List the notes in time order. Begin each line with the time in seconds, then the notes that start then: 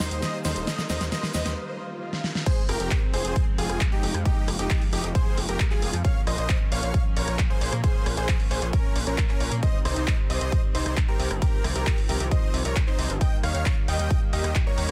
Already playing: D#3 G3 A#3, riser
0.00 D#2 D#4 C5, snare, open hi-hat, shaker
0.11 D#2, closed hi-hat, shaker
0.22 C5 D#5, snare, closed hi-hat, shaker
0.45 D#2 D#4 C5, snare, open hi-hat, shaker
0.56 D#1, closed hi-hat, shaker
0.67 C5 D#5, snare, closed hi-hat, shaker
0.78 snare, shaker
0.90 D#2 C5 D#5, snare, open hi-hat, shaker
1.01 D#2, snare, closed hi-hat, shaker
1.12 C5 D#5, snare, closed hi-hat, shaker
1.23 snare, open hi-hat, shaker
1.34 D#2 C5 D#5, snare, open hi-hat, shaker
1.46 D#2, snare, closed hi-hat, shaker
1.57 swell
2.13 snare
2.24 snare
2.35 snare
2.46 F3 G#3 C4 G#4 C5, kick, closed hi-hat, crash
2.69 F1 G4 A#4, cross-stick, open hi-hat
2.80 F1, closed hi-hat
2.91 kick, clap, closed hi-hat
3.14 F1 G#4 C5, open hi-hat
3.25 F1, closed hi-hat
3.36 kick, closed hi-hat
3.58 F1 F4 G#4, open hi-hat
3.70 F1, cross-stick, closed hi-hat
3.81 kick, clap, closed hi-hat
3.92 D#4 G4
4.03 F1, open hi-hat
4.14 F2, cross-stick, closed hi-hat
4.25 A#3 D#4 G4, kick, closed hi-hat
4.48 F1, cross-stick, open hi-hat
4.59 F1 D#4 G4, closed hi-hat
4.70 kick, clap, closed hi-hat
4.82 open hi-hat
4.93 F1 D#4 G4, open hi-hat
5.04 F1, closed hi-hat
5.15 G#4 C5, kick, closed hi-hat
5.37 F1, open hi-hat
5.49 F1 G4 A#4, closed hi-hat
5.60 kick, clap, closed hi-hat
5.71 F4 G#4, clap
5.82 F1, open hi-hat
5.93 F2, closed hi-hat
6.05 A#3 C#4 C#5 F5, kick, closed hi-hat
6.27 A#1 C5 D#5, cross-stick, open hi-hat
6.38 A#1, closed hi-hat
6.49 kick, clap, closed hi-hat
6.72 A#1 C#5 F5, open hi-hat
6.83 A#1, closed hi-hat
6.94 kick, closed hi-hat
7.16 A#1 A#4 C#5, open hi-hat
7.28 A#1, cross-stick, closed hi-hat
7.39 kick, clap, closed hi-hat
7.50 G#4 C5
7.61 A#1, open hi-hat
7.73 A#2, cross-stick, closed hi-hat
7.84 G#4 C5, kick, closed hi-hat
8.06 A#1, cross-stick, open hi-hat
8.17 A#1 G#4 C5, closed hi-hat
8.28 kick, clap, closed hi-hat
8.40 open hi-hat
8.51 A#1 G#4 C5, open hi-hat
8.62 A#1, closed hi-hat
8.73 C#4 A#4, kick, closed hi-hat
8.96 A#1, open hi-hat
9.07 A#1 C#4 A#4, closed hi-hat
9.18 kick, clap, closed hi-hat
9.29 C#4 A#4, clap
9.40 A#1, open hi-hat
9.52 A#2, closed hi-hat
9.63 D#3 G3 C4 C5 D#5, kick, closed hi-hat
9.85 C2 D#4 C5, cross-stick, open hi-hat
9.96 C2, closed hi-hat
10.08 kick, clap, closed hi-hat
10.30 C2 C5 D#5, open hi-hat
10.41 C2, closed hi-hat
10.52 kick, closed hi-hat
10.75 C2 D#4 C5, open hi-hat
10.86 C2, cross-stick, closed hi-hat
10.97 kick, clap, closed hi-hat
11.08 G4 A#4
11.19 C2, open hi-hat
11.31 G1, cross-stick, closed hi-hat
11.42 F3 G4 A#4, kick, closed hi-hat
11.64 C2, cross-stick, open hi-hat
11.75 C2 G4 A#4, closed hi-hat
11.87 kick, clap, closed hi-hat
11.98 open hi-hat
12.09 C2 G4 A#4, open hi-hat
12.20 C2, closed hi-hat
12.31 C5 D#5, kick, closed hi-hat
12.54 C2, open hi-hat
12.65 C2 A#4 C#5, closed hi-hat
12.76 kick, clap, closed hi-hat
12.87 D#4 C5, clap
12.99 C2, open hi-hat
13.10 G1, closed hi-hat
13.21 G3 A#3 D#5 G5, kick, closed hi-hat
13.43 D#2 C#5 F5, cross-stick, open hi-hat
13.55 D#2, closed hi-hat
13.66 kick, clap, closed hi-hat
13.88 D#2 D#5 G5, open hi-hat
13.99 D#2, closed hi-hat
14.11 kick, closed hi-hat
14.33 D#2 G4 D#5, open hi-hat
14.44 D#2, cross-stick, closed hi-hat
14.55 kick, clap, closed hi-hat
14.67 A#4 C#5
14.78 D#2, open hi-hat